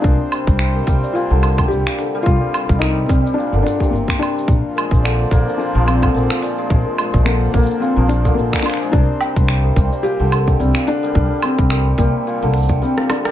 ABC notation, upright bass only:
X:1
M:4/4
L:1/16
Q:"Swing 16ths" 1/4=108
K:Cm
V:1 name="Upright bass" clef=bass
C,, z2 C,,2 z C,, z2 C,,2 z C,, z3 | C,, z2 C,,2 z C,, z2 G,,, z2 G,,, z3 | B,,, z2 B,,,2 z B,,, z2 B,,,2 z B,,, z3 | B,,, z2 B,,,2 z B,,, z2 B,,,2 z B,,, z3 |
C,, z2 C,,2 z C,, z2 C,,2 z C,, z3 | C,, z2 C,,2 z C,, z2 C,,2 z4 z |]